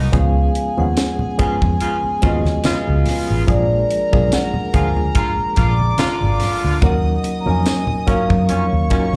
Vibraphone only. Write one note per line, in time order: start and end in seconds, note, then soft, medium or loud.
0.16 0.81 F5 medium
0.80 1.42 F#5 loud
1.41 2.26 G#5 loud
2.24 3.03 D#5 medium
3.49 4.35 D5 medium
4.33 4.76 F#5 loud
4.75 5.17 G#5 loud
5.17 6.37 A#5 loud
6.84 7.36 F#5 medium
7.41 7.47 A#5 medium
7.49 8.05 G#5 loud
8.10 9.16 F5 medium